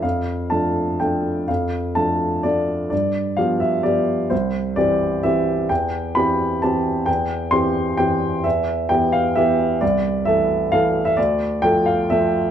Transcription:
X:1
M:3/4
L:1/16
Q:1/4=129
K:C
V:1 name="Upright piano"
f4 a4 g4 | f4 a4 d4 | d4 f2 e2 d4 | c4 d4 e4 |
g4 b4 a4 | g4 c'4 g4 | e4 g2 f2 e4 | d4 e4 f3 e |
d4 g2 f2 e4 |]
V:2 name="Upright piano"
F,,4 [F,A,D]4 [F,A,D]4 | F,,4 [F,A,D]4 [F,A,D]4 | G,,4 [F,B,G]4 [F,B,G]4 | C,,4 [E,CG]4 [E,CG]4 |
E,,4 [E,CG]4 [E,CG]4 | E,,4 [E,CG]4 [E,CG]4 | E,,4 [E,B,G]4 [E,B,G]4 | C,,4 [E,A,A]4 [E,A,A]4 |
D,,4 [F,A,A]4 [F,A,A]4 |]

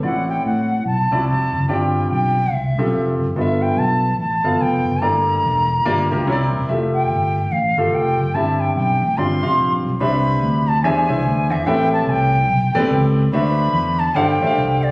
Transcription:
X:1
M:4/4
L:1/8
Q:"Swing" 1/4=144
K:Gmix
V:1 name="Bansuri"
^f g f2 a2 a2 | g2 g2 e3 z | e g a2 a2 g2 | _b6- b z |
e g3 f2 g2 | a g g2 c'3 z | b3 a ^g3 e | g a g4- g z |
b3 a g3 d |]
V:2 name="Grand piano"
[CEF^Fd]3 z2 [CE=F^Fd]2 z | [CFGd]3 z2 [CFGA]2 z | [B,FA_e=e]3 z2 [B,FAf]2 z | [A,_B,Ed]3 z [B,FGd] [B,FG_Bg] [CEB_d=de]2 |
[A,FGe]3 z2 [A,FGA]2 z | [CEGe]3 z [CFGd] [CFGf]2 z | [DGBce]3 z [DG^G^Be] [DEGBe]2 z | [CGABe]3 z2 [B,CGABd]2 z |
[D^FBce]3 z [DGAc=f] [DGAcef]2 z |]
V:3 name="Grand piano" clef=bass
A,,3 z4 z | G,,3 z4 z | G,,3 z4 z | G,,3 z G,,2 C,2 |
z8 | G,,3 z G,,3 z | C,3 z E,3 z | A,,3 z4 z |
D,3 z G,,3 z |]
V:4 name="Fingered electric bass" clef=bass
A,,,2 A,,2 B,,, C,, F,,, ^F,,, | G,,,2 B,,,2 C,, B,,, F,,, ^F,,, | G,,,2 B,,,2 A,,, G,,, F,,, ^F,,, | G,,,2 E,,,2 G,,, D,, C,, E,,, |
F,,,2 G,,,2 A,,, G,,, F,,, ^F,,, | G,,,2 B,,, A,,, G,,, F,,, _B,,, =B,,, | C,,2 D,,2 E,, ^B,,, D,, E,, | A,,,2 C,,2 B,,, A,,, _D,,2 |
D,,2 E,,2 G,,, A,,, C,,2 |]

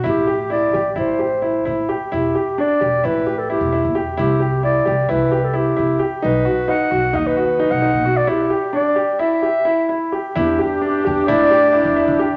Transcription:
X:1
M:9/8
L:1/16
Q:3/8=87
K:Em
V:1 name="Clarinet"
G4 d4 c8 z2 | G4 d4 B3 A G4 z2 | G4 d4 B3 A G4 z2 | B4 f4 ^d B4 f4 =d |
G4 d4 e8 z2 | G8 d8 z2 |]
V:2 name="Grand piano"
E2 G2 E2 G2 E2 G2 E2 E2 G2 | E2 G2 D2 G2 E2 G2 E2 E2 G2 | E2 G2 E2 G2 E2 G2 E2 E2 G2 | ^D2 F2 D2 F2 D2 F2 D2 D2 F2 |
E2 G2 D2 G2 E2 G2 E2 E2 G2 | E2 G2 D2 G2 E2 G2 E2 E2 G2 |]
V:3 name="French horn"
z16 z2 | z16 z2 | z16 z2 | z16 z2 |
z16 z2 | D16- D2 |]
V:4 name="Woodwind section"
z16 z2 | z16 z2 | z16 z2 | z16 z2 |
z16 z2 | [E,DG]16- [E,DG]2 |]
V:5 name="Upright bass" clef=bass
A,,,6 A,,,2 A,,,6 A,,2 z2 | E,,,2 z4 E,,,2 A,,,4- A,,, E,,,2 E,,3 | C,,6 C,,2 C,,6 C,2 z2 | B,,,2 z4 B,,,2 ^D,,4- D,, B,,,2 B,,3 |
z16 z2 | E,,2 z4 E,,2 A,,4- A,, E,,2 E,3 |]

